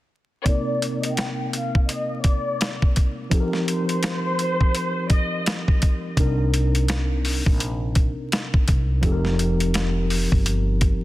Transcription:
0.45 tine electric piano C3 A#3 C4 D#4 A#4, violin section D5, kick, closed hi-hat
0.82 closed hi-hat
1.03 violin section D#5, closed hi-hat
1.16 violin section G5, snare, closed hi-hat
1.53 violin section F5, closed hi-hat
1.75 kick
1.89 violin section D#5, closed hi-hat
2.24 violin section D5, kick, closed hi-hat
2.61 snare, closed hi-hat
2.82 kick
2.96 kick, closed hi-hat
3.30 tine electric piano F3 C4 D#4 G4 A4, kick, closed hi-hat
3.40 tine electric piano A#4
3.53 snare
3.66 violin section C5, closed hi-hat
3.89 closed hi-hat
4.03 snare, closed hi-hat
4.39 closed hi-hat
4.61 kick
4.75 closed hi-hat
5.10 violin section D#5, kick, closed hi-hat
5.46 snare, closed hi-hat
5.68 kick
5.82 kick, closed hi-hat
6.16 upright bass C2, tine electric piano C3 C4 D4 D#4, kick, closed hi-hat
6.20 tine electric piano A#4
6.54 closed hi-hat
6.75 closed hi-hat
6.88 snare, closed hi-hat
7.25 open hi-hat
7.46 upright bass A#1, kick
7.60 closed hi-hat
7.95 kick, closed hi-hat
8.32 snare, closed hi-hat
8.54 kick
8.68 upright bass C2, kick, closed hi-hat
9.01 upright bass F1, tine electric piano F3 C4 D#4 G4, kick, closed hi-hat
9.05 tine electric piano A4
9.12 tine electric piano A#4
9.25 snare
9.39 closed hi-hat
9.60 closed hi-hat
9.74 snare, closed hi-hat
10.10 open hi-hat
10.32 upright bass G1, kick
10.46 closed hi-hat
10.81 kick, closed hi-hat

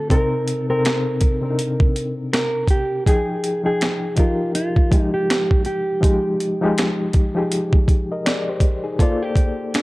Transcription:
Already playing: reed electric piano D3 A3 C4 D4 F4, clean electric guitar A4
0.10 reed electric piano C3 C4 D#4 A#4, clean electric guitar A#4, kick, closed hi-hat
0.48 closed hi-hat
0.69 reed electric piano C3 C4 D#4 A4, clean electric guitar A#4
0.79 reed electric piano A#4
0.85 finger snap, snare, closed hi-hat
1.21 kick, closed hi-hat
1.42 reed electric piano C3 C4 D4 A#4
1.50 reed electric piano D#4
1.59 closed hi-hat
1.80 kick
1.96 closed hi-hat
2.33 clean electric guitar A#4, finger snap, snare, closed hi-hat
2.68 clean electric guitar G4, kick, closed hi-hat
3.06 reed electric piano F3 D#4 G#4 G5, clean electric guitar G#4, kick, closed hi-hat
3.44 closed hi-hat
3.64 reed electric piano F3 D#4 G#4 G5, clean electric guitar G#4
3.81 finger snap, snare, closed hi-hat
4.16 reed electric piano F3 D#4 G4 A#4, clean electric guitar F4, kick, closed hi-hat
4.55 clean electric guitar F4, closed hi-hat
4.76 kick
4.91 reed electric piano F3 G#3 D#4 G4, kick, closed hi-hat
5.02 clean electric guitar D#4
5.14 clean electric guitar G4
5.30 finger snap, snare, closed hi-hat
5.51 kick
5.65 clean electric guitar G4, closed hi-hat
6.01 reed electric piano F3 G#3 D#4 G4, kick, closed hi-hat
6.40 closed hi-hat
6.61 reed electric piano F3 G#3 D#4 G4
6.78 finger snap, snare, closed hi-hat
7.13 kick, closed hi-hat
7.35 reed electric piano F3 D#4 G4 G#4
7.52 closed hi-hat
7.73 kick
7.88 kick, closed hi-hat
8.12 reed electric piano A#4 D#5
8.26 reed electric piano G#4 D5, finger snap, snare, closed hi-hat
8.49 reed electric piano G4 C5
8.60 kick, closed hi-hat
8.84 reed electric piano D#4 G#4
8.99 reed electric piano A#3 A4 C5 D5, clean electric guitar F4, kick, closed hi-hat
9.22 clean electric guitar G4
9.36 kick, closed hi-hat
9.74 clean electric guitar D4, finger snap, snare, closed hi-hat

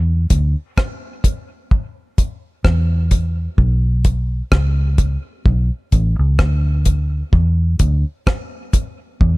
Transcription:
Already playing: fingered electric bass E2
0.30 fingered electric bass D2, kick, closed hi-hat
0.77 kick, cross-stick
1.24 kick, closed hi-hat
1.71 kick
2.18 kick, closed hi-hat
2.64 fingered electric bass E2, kick, cross-stick
3.11 kick, closed hi-hat
3.58 fingered electric bass B1, kick
4.05 kick, closed hi-hat
4.52 fingered electric bass C#2, kick, cross-stick
4.98 kick, closed hi-hat
5.46 fingered electric bass B1, kick
5.92 fingered electric bass A1, kick, closed hi-hat
6.19 fingered electric bass C#2
6.39 fingered electric bass D2, kick, cross-stick
6.85 kick, closed hi-hat
7.33 fingered electric bass E2, kick
7.79 fingered electric bass D2, kick, closed hi-hat
8.27 kick, cross-stick
8.73 kick, closed hi-hat
9.21 fingered electric bass E2, kick

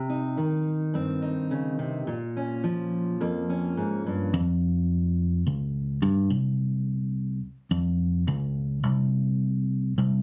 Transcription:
Already playing: steel-string acoustic guitar C3
0.10 steel-string acoustic guitar D#4
0.37 steel-string acoustic guitar D#3
0.94 steel-string acoustic guitar G2 C4
1.22 steel-string acoustic guitar D#4
1.51 steel-string acoustic guitar C#3
1.79 steel-string acoustic guitar C3
2.07 steel-string acoustic guitar A#2
2.37 steel-string acoustic guitar C#4
2.64 steel-string acoustic guitar F3
3.21 steel-string acoustic guitar F2 A#3
3.50 steel-string acoustic guitar C#4
3.77 steel-string acoustic guitar G#2
4.07 steel-string acoustic guitar G2
4.34 fingered electric bass F2
5.47 fingered electric bass C#2
6.02 fingered electric bass G2
6.30 fingered electric bass C2
7.71 fingered electric bass F2
8.27 fingered electric bass C#2
8.84 fingered electric bass C2
9.98 fingered electric bass C2

